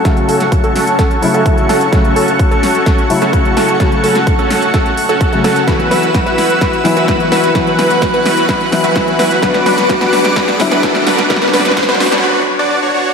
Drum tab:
HH |x-x-o-x-x-x-o-x-x-x-o-x-x-x-o-x-|x-x-o-x-x-x-o-x-x-x-o-x-x-x-o-x-|x-x-o-x-x-x-o-x-x-x-o-x-x-x-o-x-|x-x-o-x-x-x-o-x-x-x-o-x-x-x-o-x-|
SD |o-----o-----o---o-----------o---|o-----------o---o-----o-----o---|o-----o-----o---o-----------o---|o---o---o---o---o---o---o---o---|
BD |o-------o-------o-------o-------|o-------o-------o-------o-------|o-------o-------o-------o-------|o-------o-------o-------o-------|

HH |x-x-o-x-x-x-o-x-x-x-o-x-x-x-o-x-|x-x-o-x-x-x-o-x-x-x-o-x-x-x-o-x-|x-x-o-x-x-x-o-x-----------------|
SD |o---o---o---o---o---o---o---o---|o-o-o-o-o-o-o-o-o-o-o-o-o-o-o-o-|oooooooooooooooo----------------|
BD |o-------o-------o-------o-------|o-------o-------o-------o-------|o-------o-----------------------|